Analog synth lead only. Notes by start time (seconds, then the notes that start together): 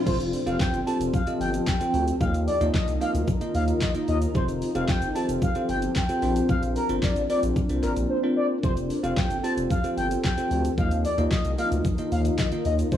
0.06 C5
0.47 F5
0.60 G5
0.87 A5
1.14 F5
1.41 G5
1.67 G5
2.20 F5
2.47 D5
2.74 D#5
3.01 F5
3.55 F5
3.82 D#5
4.08 D#5
4.35 C5
4.75 F5
4.89 G5
5.15 A5
5.43 F5
5.69 G5
5.96 G5
6.49 F5
6.76 A#4
7.03 D5
7.30 D5
7.83 A#4
8.10 C5
8.36 D5
8.63 C5
9.03 F5
9.17 G5
9.44 A5
9.70 F5
9.97 G5
10.24 G5
10.78 F5
11.05 D5
11.32 D#5
11.59 F5
12.12 F5
12.39 D#5
12.65 D#5
12.92 C5